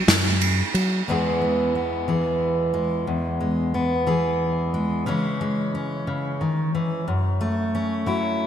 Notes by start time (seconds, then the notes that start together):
0.08 F#2, snare, ride
0.41 ride
0.74 F#3, ride
1.08 E2 E3 G#3 B3 G#4
1.42 G#3
1.75 B3
2.08 E3 G#4
2.74 G#3
3.07 E2
3.40 G#3
3.74 B3
4.07 E3 G#4
4.74 G#3
5.06 C#3 E3 G#3 C#4
5.41 G#3
5.75 C#4
6.07 C#3
6.41 D#3
6.75 E3
7.08 F#2
7.41 A3
7.75 C#4
8.06 F#3 E4